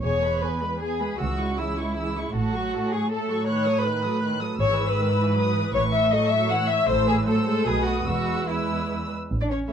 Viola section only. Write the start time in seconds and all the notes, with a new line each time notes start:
0.03 B3 G#4
0.23 G#3 B4
0.43 B3 G#4
0.62 G#3 B4
0.81 B3 G#4
1.01 G#3 B4
1.20 E3 G#4
1.39 G#3 E4
1.59 E3 G#4
1.79 G#3 E4
1.98 E3 G#4
2.17 G#3 E4
2.35 A3 A4
2.55 F#3 F#4
2.74 A3 A4
2.93 F#3 F#4
3.11 A3 A4
3.29 F#3 F#4
3.49 D#3 B4
3.67 F#3 A4
3.86 D#3 B4
4.05 F#3 A4
4.23 D#3 B4
4.42 F#3 A4
4.60 E3 G#4
4.97 D#3 B4
5.16 E3
5.36 F#3
5.54 E3
5.74 E3
6.13 F#3 A4
6.51 E3 C#5
6.88 E3 A4
7.08 B4
7.27 F#3 C5
7.46 G#3
7.66 A3 B4
8.07 G#3 B4
8.49 G#3 B4